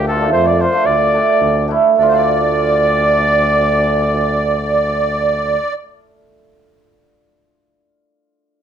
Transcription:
0.00 0.35 D2 medium
0.00 0.29 G4 medium
0.08 0.15 D4 medium
0.08 0.16 F4 medium
0.08 0.32 A4 medium
0.20 0.33 A3 medium
0.20 0.34 D4 medium
0.20 0.34 G4 medium
0.32 0.65 F2 medium
0.32 0.46 C5 medium
0.32 0.49 C5 medium
0.44 0.59 D5 medium
0.44 0.63 D5 medium
0.58 0.66 D4 medium
0.58 0.83 C5 medium
0.58 0.88 C5 medium
0.62 0.67 F4 medium
0.73 0.86 A3 medium
0.73 0.86 D4 medium
0.73 0.86 F4 medium
0.84 1.19 D2 medium
0.84 1.65 D5 medium
0.84 1.70 D5 medium
1.13 1.27 A3 medium
1.13 1.28 D4 medium
1.13 1.28 G4 medium
1.41 1.76 D2 medium
1.68 1.83 A3 medium
1.68 1.84 D4 medium
1.68 1.85 E4 medium
1.95 5.58 D2 medium
1.95 6.39 A3 medium
1.95 5.72 D4 medium
1.95 2.07 D5 medium
1.95 5.58 D5 medium
2.02 5.61 F4 medium
2.08 2.16 C5 medium
2.14 5.73 D5 loud

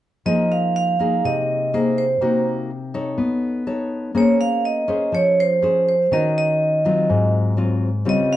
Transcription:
0.26 1.21 F3 medium
0.26 0.95 A#3 medium
0.26 0.95 D#4 soft
0.26 0.95 G#4 medium
0.26 0.51 D#5 medium
0.52 0.75 F5 medium
0.76 1.26 F5 medium
0.99 1.68 A#3 medium
0.99 1.69 D#4 medium
0.99 1.69 G#4 medium
1.24 2.19 C3 medium
1.24 1.75 D#5 medium
1.74 2.04 A#3 soft
1.74 2.04 D#4 soft
1.74 2.05 G#4 soft
1.74 1.97 C5 medium
1.98 2.43 C5 medium
2.21 3.16 C3 medium
2.21 2.70 A#3 medium
2.21 2.70 D#4 medium
2.21 2.70 F#4 medium
2.94 3.63 D#4 medium
2.94 3.64 A4 medium
2.94 3.64 C#5 medium
3.18 4.13 B3 medium
3.67 4.12 D#4 soft
3.67 4.12 A4 soft
3.67 4.12 C#5 medium
4.15 5.10 A#3 medium
4.15 4.85 C#4 medium
4.15 4.85 G#4 medium
4.15 4.85 C5 medium
4.15 4.28 C#5 medium
4.41 4.63 F5 medium
4.65 5.15 D#5 medium
4.88 5.58 C#4 medium
4.88 5.58 G#4 soft
4.88 5.58 C5 medium
5.12 6.08 F3 medium
5.12 5.39 C#5 medium
5.40 5.87 C5 medium
5.62 5.94 C#4 soft
5.62 5.94 G#4 soft
5.62 5.94 C5 medium
5.89 6.13 C5 medium
6.12 7.07 D#3 medium
6.12 6.81 C#4 medium
6.12 6.81 F#4 soft
6.12 6.81 A#4 medium
6.12 6.37 D#5 medium
6.38 7.30 D#5 medium
6.85 7.54 F#3 medium
6.85 7.54 C4 medium
6.85 7.54 F4 medium
7.09 8.04 G#2 medium
7.57 7.89 F#3 soft
7.57 7.89 C4 soft
7.57 7.89 F4 soft
8.05 8.37 C#3 medium
8.05 8.37 G3 medium
8.05 8.37 C4 medium
8.05 8.37 F4 medium
8.05 8.33 D#5 medium
8.33 8.37 F5 medium

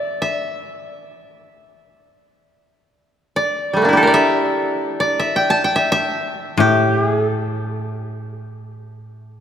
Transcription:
0.00 1.13 D5 medium
0.00 0.21 E5 medium
0.22 1.71 E5 medium
3.36 3.85 D5 medium
3.73 4.03 G3 soft
3.73 4.09 A3 soft
3.82 4.03 A#3 soft
3.82 6.27 D4 soft
3.82 4.03 A#4 medium
3.89 6.15 E4 soft
3.93 5.97 G4 soft
3.97 5.87 A4 medium
4.03 5.56 A#4 medium
4.07 5.00 D5 medium
4.14 5.19 E5 medium
5.00 6.60 D5 medium
5.20 5.75 E5 medium
5.36 5.64 G5 medium
5.50 6.76 A5 medium
5.64 6.99 G5 medium
5.76 5.91 E5 medium
5.92 7.41 E5 medium
6.57 9.40 A2 medium
6.57 6.98 G4 medium
6.98 7.22 G#4 medium
7.22 8.71 A4 medium

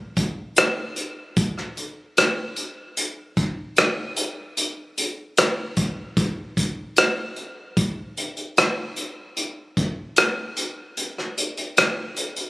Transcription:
0.17 kick medium
0.17 closed hi-hat medium
0.56 cross-stick medium
0.56 closed hi-hat medium
0.96 closed hi-hat medium
1.36 kick medium
1.36 closed hi-hat medium
1.58 cross-stick soft
1.77 closed hi-hat medium
2.17 cross-stick medium
2.17 closed hi-hat medium
2.56 closed hi-hat medium
2.97 closed hi-hat medium
3.37 kick medium
3.37 closed hi-hat soft
3.76 cross-stick medium
3.76 closed hi-hat medium
4.16 closed hi-hat medium
4.57 closed hi-hat medium
4.98 closed hi-hat medium
5.37 cross-stick medium
5.37 closed hi-hat medium
5.77 kick medium
5.77 closed hi-hat medium
6.17 kick medium
6.17 closed hi-hat medium
6.57 kick medium
6.57 closed hi-hat medium
6.96 cross-stick medium
6.96 closed hi-hat medium
7.36 closed hi-hat medium
7.77 kick medium
7.77 closed hi-hat medium
8.17 closed hi-hat medium
8.37 closed hi-hat soft
8.57 cross-stick medium
8.57 closed hi-hat medium
8.96 closed hi-hat medium
9.37 closed hi-hat medium
9.77 kick medium
9.77 closed hi-hat soft
10.16 cross-stick medium
10.16 closed hi-hat medium
10.56 closed hi-hat medium
10.97 closed hi-hat medium
11.18 cross-stick soft
11.38 closed hi-hat medium
11.57 closed hi-hat soft
11.77 cross-stick medium
11.77 closed hi-hat medium
12.16 closed hi-hat medium
12.36 closed hi-hat soft

